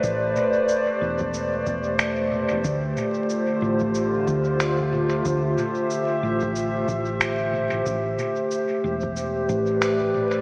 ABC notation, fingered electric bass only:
X:1
M:4/4
L:1/16
Q:"Swing 16ths" 1/4=92
K:Am
V:1 name="Fingered electric bass" clef=bass
A,,,2 z4 E,,,4 E,,,4- E,,, E,,, | D,,2 z4 A,,,4 D,,6 | D,,2 z4 A,,,4 A,,,4- A,,, A,,, | A,,,2 z4 E,,,4 A,,,6 |]